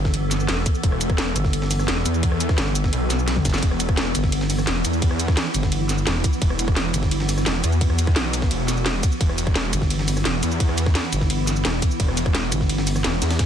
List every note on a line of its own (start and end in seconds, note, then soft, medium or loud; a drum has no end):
0.00 0.47 G1 medium
0.00 13.46 E3 medium
0.00 13.46 B3 medium
0.00 3.60 A4 medium
0.05 kick medium
0.05 snare medium
0.14 closed hi-hat medium
0.14 ride medium
0.31 snare soft
0.31 closed hi-hat medium
0.31 ride medium
0.31 cabasa medium
0.40 cabasa soft
0.49 0.65 E1 loud
0.49 snare loud
0.49 closed hi-hat medium
0.49 ride medium
0.57 snare soft
0.66 kick loud
0.66 closed hi-hat medium
0.66 ride medium
0.66 cabasa medium
0.75 cabasa soft
0.83 1.34 E1 loud
0.83 kick loud
0.83 closed hi-hat medium
0.83 ride loud
0.92 cross-stick soft
1.01 closed hi-hat loud
1.01 ride medium
1.01 cabasa medium
1.10 kick loud
1.10 cross-stick soft
1.10 ride soft
1.18 snare loud
1.18 closed hi-hat medium
1.18 ride medium
1.36 1.87 G1 medium
1.36 cross-stick soft
1.36 closed hi-hat loud
1.36 ride medium
1.36 cabasa medium
1.44 kick medium
1.44 snare soft
1.53 closed hi-hat medium
1.53 ride medium
1.62 snare medium
1.71 snare soft
1.71 closed hi-hat loud
1.71 open hi-hat medium
1.71 cabasa medium
1.79 cross-stick soft
1.79 snare soft
1.79 cabasa soft
1.88 2.04 E1 loud
1.88 snare loud
1.88 closed hi-hat medium
1.88 ride medium
1.97 snare soft
2.06 2.56 E2 loud
2.06 closed hi-hat loud
2.06 ride medium
2.06 cabasa medium
2.14 ride soft
2.14 cabasa soft
2.23 kick loud
2.23 closed hi-hat medium
2.23 ride medium
2.32 cross-stick soft
2.40 closed hi-hat loud
2.40 ride medium
2.40 cabasa medium
2.49 kick loud
2.49 cross-stick soft
2.49 snare medium
2.58 2.91 G1 loud
2.58 snare loud
2.58 closed hi-hat medium
2.58 ride medium
2.67 snare soft
2.75 closed hi-hat loud
2.75 ride medium
2.75 cabasa medium
2.84 kick medium
2.84 snare medium
2.93 3.44 B1 loud
2.93 closed hi-hat medium
2.93 ride medium
3.10 snare soft
3.10 closed hi-hat loud
3.10 ride medium
3.10 cabasa medium
3.19 cabasa soft
3.28 snare loud
3.28 snare medium
3.28 closed hi-hat medium
3.28 ride medium
3.36 kick medium
3.36 snare soft
3.36 high tom medium
3.45 3.61 F#1 loud
3.45 kick loud
3.45 snare medium
3.45 closed hi-hat loud
3.45 ride medium
3.45 cabasa medium
3.49 snare medium
3.49 ride medium
3.54 snare medium
3.54 ride medium
3.54 cabasa soft
3.58 snare medium
3.58 ride medium
3.63 4.13 E1 medium
3.63 6.41 E4 medium
3.63 kick loud
3.63 closed hi-hat medium
3.63 ride medium
3.71 cross-stick medium
3.80 closed hi-hat loud
3.80 ride medium
3.80 cabasa medium
3.89 kick loud
3.89 cross-stick medium
3.89 ride soft
3.97 snare loud
3.97 closed hi-hat medium
3.97 ride medium
4.15 4.66 G1 medium
4.15 cross-stick soft
4.15 closed hi-hat loud
4.15 ride soft
4.15 ride medium
4.15 cabasa medium
4.24 kick medium
4.24 snare soft
4.32 closed hi-hat medium
4.32 ride medium
4.41 snare medium
4.50 snare soft
4.50 closed hi-hat loud
4.50 open hi-hat medium
4.50 ride medium
4.50 cabasa medium
4.58 cross-stick soft
4.58 snare soft
4.58 cabasa soft
4.67 4.83 E1 loud
4.67 snare loud
4.67 closed hi-hat medium
4.67 ride medium
4.76 snare soft
4.85 5.36 E2 loud
4.85 closed hi-hat loud
4.85 ride medium
4.85 cabasa medium
4.93 ride soft
4.93 cabasa soft
5.02 kick loud
5.02 closed hi-hat medium
5.02 ride medium
5.11 cross-stick soft
5.20 closed hi-hat loud
5.20 ride medium
5.20 cabasa medium
5.28 kick loud
5.28 cross-stick medium
5.28 snare medium
5.37 snare loud
5.37 closed hi-hat medium
5.37 ride medium
5.46 snare soft
5.54 6.05 G1 loud
5.54 closed hi-hat medium
5.54 ride medium
5.54 ride soft
5.54 cabasa medium
5.63 kick medium
5.63 snare medium
5.72 closed hi-hat medium
5.72 ride medium
5.89 snare soft
5.89 closed hi-hat medium
5.89 ride medium
5.89 cabasa medium
5.98 cabasa soft
6.07 6.23 E1 loud
6.07 snare loud
6.07 closed hi-hat medium
6.07 ride medium
6.15 snare soft
6.24 kick loud
6.24 closed hi-hat medium
6.24 ride medium
6.24 cabasa medium
6.33 cabasa soft
6.42 6.93 E1 medium
6.42 9.20 F#4 medium
6.42 kick loud
6.42 closed hi-hat medium
6.42 ride medium
6.50 cross-stick medium
6.59 closed hi-hat medium
6.59 ride medium
6.59 cabasa medium
6.68 kick loud
6.68 cross-stick medium
6.68 ride soft
6.77 snare loud
6.77 closed hi-hat medium
6.77 ride medium
6.94 7.45 G1 medium
6.94 cross-stick soft
6.94 closed hi-hat medium
6.94 ride medium
6.94 cabasa medium
7.03 kick medium
7.03 snare soft
7.11 closed hi-hat medium
7.11 ride medium
7.20 snare medium
7.29 snare soft
7.29 closed hi-hat loud
7.29 open hi-hat medium
7.29 ride medium
7.29 cabasa medium
7.38 cross-stick soft
7.38 snare soft
7.38 cabasa soft
7.46 7.62 E1 loud
7.46 snare loud
7.46 closed hi-hat medium
7.46 ride medium
7.55 snare soft
7.64 8.15 E2 loud
7.64 closed hi-hat loud
7.64 ride medium
7.64 cabasa medium
7.72 ride soft
7.72 cabasa soft
7.81 kick loud
7.81 closed hi-hat medium
7.81 ride medium
7.90 cross-stick soft
7.99 closed hi-hat medium
7.99 ride medium
7.99 cabasa medium
8.07 kick loud
8.07 cross-stick soft
8.07 snare medium
8.16 8.50 B1 medium
8.16 snare loud
8.16 closed hi-hat medium
8.16 ride medium
8.25 snare soft
8.33 closed hi-hat medium
8.33 ride medium
8.33 cabasa medium
8.42 kick medium
8.42 snare medium
8.51 9.02 E1 loud
8.51 closed hi-hat medium
8.51 ride medium
8.68 snare soft
8.68 closed hi-hat medium
8.68 ride medium
8.68 cabasa medium
8.77 cabasa soft
8.86 snare loud
8.86 closed hi-hat medium
8.86 ride medium
8.95 snare soft
9.03 kick loud
9.03 closed hi-hat medium
9.03 ride medium
9.03 cabasa medium
9.12 cabasa soft
9.21 9.72 E1 loud
9.21 11.99 E4 medium
9.21 kick loud
9.21 closed hi-hat medium
9.21 ride medium
9.29 cross-stick soft
9.38 closed hi-hat medium
9.38 ride medium
9.38 cabasa medium
9.47 kick loud
9.47 cross-stick soft
9.47 ride soft
9.56 snare loud
9.56 closed hi-hat medium
9.56 ride medium
9.73 10.24 G1 medium
9.73 cross-stick soft
9.73 closed hi-hat medium
9.73 ride medium
9.73 cabasa medium
9.82 kick medium
9.82 snare soft
9.90 closed hi-hat medium
9.90 ride medium
9.99 snare medium
10.08 snare soft
10.08 closed hi-hat medium
10.08 open hi-hat medium
10.08 ride medium
10.08 cabasa medium
10.17 cross-stick soft
10.17 snare soft
10.17 cabasa soft
10.25 10.41 E1 loud
10.25 snare loud
10.25 closed hi-hat medium
10.25 ride medium
10.34 snare soft
10.43 10.94 E2 loud
10.43 closed hi-hat medium
10.43 ride medium
10.43 cabasa medium
10.51 ride soft
10.51 cabasa soft
10.60 kick loud
10.60 closed hi-hat medium
10.60 ride medium
10.69 cross-stick soft
10.78 closed hi-hat loud
10.78 ride medium
10.78 cabasa medium
10.86 kick loud
10.86 cross-stick soft
10.86 snare medium
10.95 snare loud
10.95 closed hi-hat medium
10.95 ride medium
11.04 snare soft
11.13 11.63 G1 medium
11.13 closed hi-hat medium
11.13 ride medium
11.13 cabasa medium
11.21 kick medium
11.21 snare medium
11.30 closed hi-hat medium
11.30 ride medium
11.47 snare soft
11.47 closed hi-hat loud
11.47 ride medium
11.47 cabasa medium
11.56 cabasa soft
11.65 11.81 E1 loud
11.65 snare loud
11.65 closed hi-hat medium
11.65 ride medium
11.74 snare soft
11.82 kick loud
11.82 closed hi-hat loud
11.82 ride medium
11.82 cabasa medium
11.91 cabasa soft
12.00 12.51 E1 loud
12.00 13.46 G4 medium
12.00 kick loud
12.00 closed hi-hat medium
12.00 ride medium
12.08 cross-stick soft
12.17 closed hi-hat medium
12.17 ride medium
12.17 cabasa medium
12.26 kick loud
12.26 cross-stick soft
12.26 ride soft
12.35 snare loud
12.35 closed hi-hat medium
12.35 ride medium
12.52 13.03 G1 medium
12.52 cross-stick soft
12.52 closed hi-hat loud
12.52 ride medium
12.52 cabasa medium
12.61 kick medium
12.61 snare soft
12.70 closed hi-hat medium
12.70 ride medium
12.78 snare medium
12.87 snare medium
12.87 closed hi-hat loud
12.87 open hi-hat medium
12.87 ride medium
12.87 cabasa medium
12.96 cross-stick soft
12.96 snare soft
12.96 cabasa soft
13.04 13.20 E1 loud
13.04 snare loud
13.04 closed hi-hat medium
13.04 ride medium
13.13 snare soft
13.22 13.46 E2 loud
13.22 snare loud
13.22 closed hi-hat loud
13.22 ride medium
13.22 cabasa medium
13.31 snare loud
13.31 ride medium
13.31 cabasa soft
13.39 kick loud
13.39 snare loud
13.39 closed hi-hat medium
13.39 ride medium